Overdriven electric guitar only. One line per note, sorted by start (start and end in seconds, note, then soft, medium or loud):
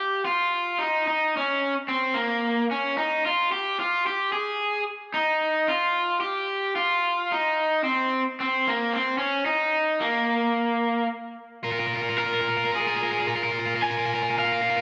0.00 0.25 G4 medium
0.25 0.81 F4 medium
0.79 1.05 D#4 medium
1.07 1.35 D#4 medium
1.37 1.73 C#4 medium
1.88 2.14 C4 medium
2.14 2.65 A#3 medium
2.71 2.97 C#4 medium
2.98 3.22 D#4 medium
3.26 3.50 F4 medium
3.52 3.79 G4 medium
3.80 4.04 F4 medium
4.06 4.32 G4 medium
4.32 4.83 G#4 medium
5.14 5.69 D#4 medium
5.68 6.18 F4 medium
6.20 6.75 G4 medium
6.76 7.31 F4 medium
7.32 7.83 D#4 loud
7.84 8.22 C4 medium
8.40 8.67 C4 medium
8.67 8.94 A#3 medium
8.93 9.18 C4 medium
9.18 9.45 C#4 medium
9.46 10.02 D#4 medium
10.01 11.06 A#3 medium
12.18 12.70 A#4 medium
12.76 13.26 G#4 medium
13.82 14.34 G#5 medium
14.39 14.81 F5 medium